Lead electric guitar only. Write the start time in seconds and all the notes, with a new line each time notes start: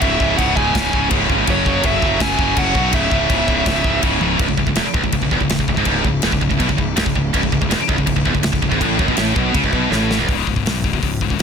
0.01 E5
0.37 F#5
0.56 G#5
1.50 C#5
1.86 E5
2.22 G#5
2.59 F#5
2.94 E5